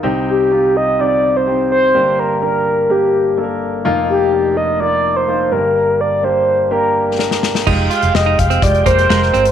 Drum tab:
CC |----------------|----------------|----------------|----------------|
HH |----------------|----------------|----------------|----------------|
SD |----------------|----------------|----------------|------------oooo|
BD |----------------|----------------|----------------|----------------|

CC |x---------------|
HH |--xx--xxxxxx--xx|
SD |----o-------oo--|
BD |o-----o-o-o-----|